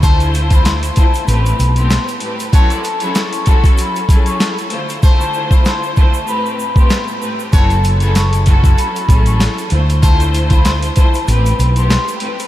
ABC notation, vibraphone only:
X:1
M:4/4
L:1/16
Q:"Swing 16ths" 1/4=96
K:F#m
V:1 name="Vibraphone"
a3 b =c'2 a2 b3 c'2 z3 | a3 b c'2 a2 b3 c'2 z3 | a3 b =c'2 a2 b3 c'2 z3 | a3 b c'2 a2 b3 c'2 z3 |
a3 b =c'2 a2 b3 c'2 z3 |]